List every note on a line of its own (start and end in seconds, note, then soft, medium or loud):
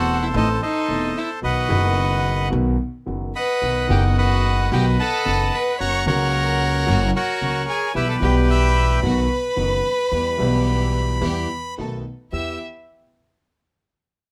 0.00 0.30 E1 loud
0.00 0.30 E2 loud
0.00 0.29 E3 loud
0.00 0.30 A3 medium
0.00 0.31 C4 medium
0.00 0.18 F#4 loud
0.00 0.31 A4 loud
0.00 0.35 A4 medium
0.00 0.35 C5 medium
0.00 0.24 F#5 loud
0.22 0.28 E4 medium
0.22 0.28 E5 medium
0.33 0.57 A1 loud
0.33 0.57 A2 loud
0.33 0.57 E3 medium
0.33 0.57 A3 medium
0.33 0.57 C4 medium
0.33 0.47 D#4 medium
0.33 0.57 A4 medium
0.33 0.61 A4 medium
0.33 0.61 C5 medium
0.33 0.48 D#5 loud
0.62 1.13 D#4 loud
0.62 1.40 A4 medium
0.62 1.40 C5 medium
0.62 1.18 D#5 medium
0.88 1.11 E1 medium
0.88 1.12 E1 medium
0.88 1.11 E2 medium
0.88 1.11 E3 medium
0.88 1.11 A3 soft
0.88 1.11 C4 medium
0.88 1.12 A4 medium
1.17 1.29 E4 medium
1.17 1.29 E5 medium
1.41 1.65 B1 medium
1.41 1.66 B1 medium
1.41 1.65 B2 medium
1.41 1.65 D#3 soft
1.41 1.65 F#3 medium
1.41 1.65 B3 soft
1.41 1.65 F#4 medium
1.41 2.49 F#4 medium
1.41 2.48 B4 medium
1.41 2.48 D#5 medium
1.41 2.49 F#5 loud
1.67 2.47 F#1 loud
1.67 2.48 F#1 loud
1.67 2.47 F#2 loud
1.67 2.46 D#3 medium
1.67 2.47 F#3 medium
1.67 2.48 B3 medium
1.67 2.48 F#4 loud
2.50 2.74 B1 medium
2.50 2.75 B1 loud
2.50 2.75 B2 medium
2.50 2.74 D#3 medium
2.50 2.74 F#3 medium
2.50 2.74 B3 medium
2.50 2.75 F#4 medium
3.06 3.30 F#1 medium
3.06 3.31 F#1 medium
3.06 3.30 F#2 medium
3.06 3.30 D#3 medium
3.06 3.30 F#3 soft
3.06 3.30 B3 soft
3.06 3.31 F#4 medium
3.35 3.86 B4 loud
3.35 4.17 D#5 medium
3.35 4.17 F#5 medium
3.35 3.87 B5 loud
3.61 3.85 B1 medium
3.61 3.86 B1 medium
3.61 3.85 B2 medium
3.61 3.85 D#3 soft
3.61 3.85 F#3 soft
3.61 3.86 B3 soft
3.61 3.86 B3 medium
3.61 3.86 D#4 medium
3.61 3.86 F#4 medium
3.87 4.67 F#1 medium
3.87 4.68 F#1 loud
3.87 4.68 F#2 loud
3.87 4.67 D#3 medium
3.87 4.67 F#3 medium
3.87 4.68 B3 medium
3.87 4.68 D#4 medium
3.87 4.68 F#4 medium
3.87 4.68 F#4 loud
3.87 4.03 G4 medium
3.92 4.04 G5 medium
4.18 4.69 F#4 medium
4.18 4.71 B4 medium
4.18 4.71 D#5 medium
4.18 4.74 F#5 loud
4.71 4.95 B1 loud
4.71 4.95 B1 medium
4.71 4.95 B2 loud
4.71 4.95 D#3 medium
4.71 4.95 F#3 medium
4.71 4.95 B3 medium
4.71 4.95 B3 loud
4.71 4.95 D#4 medium
4.71 4.95 F#4 loud
4.71 4.95 F#4 medium
4.71 4.85 G4 medium
4.71 5.76 B4 medium
4.71 4.98 D#5 medium
4.71 4.85 G5 loud
4.99 5.50 A4 loud
4.99 5.76 D#5 medium
4.99 5.76 F#5 medium
4.99 5.55 A5 loud
5.25 5.49 F#1 medium
5.25 5.49 F#2 medium
5.25 5.48 D#3 medium
5.25 5.49 F#3 medium
5.25 5.49 B3 medium
5.25 5.49 D#4 medium
5.25 5.49 F#4 medium
5.54 5.79 B4 loud
5.54 5.79 B5 loud
5.80 6.03 F#1 medium
5.80 6.03 F#2 medium
5.80 6.03 C#3 medium
5.80 6.03 F#3 medium
5.80 6.03 A#3 medium
5.80 6.03 A#3 soft
5.80 6.03 C#4 medium
5.80 6.03 F#4 medium
5.80 6.05 C#5 loud
5.80 6.06 F#5 medium
5.80 6.06 A#5 medium
5.80 6.05 C#6 loud
6.06 6.84 C#2 loud
6.06 6.84 C#3 loud
6.06 6.84 F#3 medium
6.06 6.84 A#3 medium
6.06 6.84 C#4 medium
6.06 6.84 F#4 loud
6.06 6.85 F#4 loud
6.06 7.11 A#4 medium
6.06 7.11 C#5 medium
6.06 7.11 F#5 medium
6.06 7.11 A#5 loud
6.86 7.11 F#1 loud
6.86 7.10 F#2 loud
6.86 7.10 C#3 medium
6.86 7.10 F#3 loud
6.86 7.10 A#3 medium
6.86 7.11 A#3 medium
6.86 7.11 C#4 medium
6.86 7.10 F#4 medium
6.86 7.11 F#4 loud
7.16 7.65 F#4 loud
7.16 7.92 A#4 medium
7.16 7.92 C#5 medium
7.16 7.65 F#5 loud
7.41 7.64 C#2 medium
7.41 7.64 C#3 medium
7.41 7.64 F#3 soft
7.41 7.64 A#3 medium
7.41 7.64 A#3 soft
7.41 7.65 C#4 medium
7.41 7.65 F#4 medium
7.69 7.94 G#4 medium
7.69 7.94 G#5 loud
7.95 8.18 B1 medium
7.95 8.18 B2 medium
7.95 8.18 E3 medium
7.95 8.17 G3 soft
7.95 8.18 B3 soft
7.95 8.18 B3 medium
7.95 8.18 E4 medium
7.95 8.08 E4 medium
7.95 8.18 G4 medium
7.95 8.99 G4 medium
7.95 8.18 G4 medium
7.95 8.99 B4 medium
7.95 8.08 E5 loud
8.08 8.15 A4 medium
8.08 8.16 A5 medium
8.20 8.99 B1 loud
8.20 8.99 B2 loud
8.20 8.98 E3 medium
8.20 8.98 G3 medium
8.20 8.99 B3 medium
8.20 8.99 E4 medium
8.20 8.34 G4 medium
8.20 8.99 G4 medium
8.20 9.00 G4 loud
8.24 8.36 G5 loud
8.50 11.74 B4 loud
8.50 9.00 E5 medium
8.50 9.00 G5 medium
8.50 11.75 B5 loud
9.02 9.25 B1 loud
9.02 9.26 B1 loud
9.02 9.25 B2 loud
9.02 9.25 D#3 medium
9.02 9.25 F#3 medium
9.02 9.25 B3 medium
9.02 9.26 B3 medium
9.02 9.26 D#4 medium
9.02 9.26 F#4 medium
9.02 9.26 F#4 loud
9.56 9.80 F#1 medium
9.56 9.80 F#2 medium
9.56 9.79 D#3 medium
9.56 9.80 F#3 soft
9.56 9.80 B3 medium
9.56 9.80 D#4 medium
9.56 9.80 F#4 medium
10.11 10.35 E2 medium
10.11 10.35 E3 medium
10.11 10.35 G3 soft
10.11 10.35 B3 medium
10.11 10.35 E4 medium
10.11 10.35 G4 medium
10.38 11.17 B1 loud
10.38 11.18 B1 medium
10.38 11.17 B2 loud
10.38 11.17 E3 medium
10.38 11.17 G3 medium
10.38 11.17 B3 loud
10.38 11.18 B3 medium
10.38 11.18 E4 medium
10.38 11.18 G4 loud
10.38 11.18 G4 medium
11.21 11.45 E2 loud
11.21 11.45 E3 loud
11.21 11.44 G3 medium
11.21 11.45 B3 medium
11.21 11.45 E4 medium
11.21 11.45 G4 medium
11.21 11.45 G4 loud
11.78 12.01 B1 medium
11.78 12.01 B2 medium
11.78 12.01 D#3 medium
11.78 12.01 A3 medium
11.78 12.01 B3 soft
11.78 12.01 B3 medium
11.78 12.01 D#4 medium
11.78 12.01 F#4 medium
11.78 12.01 A4 medium
12.32 12.55 E2 medium
12.32 12.56 E2 medium
12.32 12.55 B3 medium
12.32 12.56 B3 medium
12.32 12.56 E4 medium
12.32 12.55 G4 medium
12.32 12.56 G4 medium
12.32 12.58 E5 medium
12.32 12.59 E6 medium